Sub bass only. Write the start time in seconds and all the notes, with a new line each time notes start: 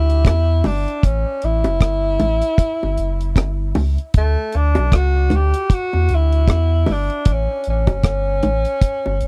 Already playing: D2
0.26 E2
0.66 G1
1.04 A1
1.44 A1
1.65 F#1
1.81 G1
2.21 A1
2.83 G1
2.99 F#1
3.36 G1
3.76 C#2
4.15 D2
4.55 D2
4.78 B1
4.92 C#2
5.33 D2
5.94 E2
6.10 D2
6.48 E2
6.89 G1
7.26 A1
7.67 A1
7.88 F#1
8.04 G1
8.45 A1
9.07 G1
9.22 F#1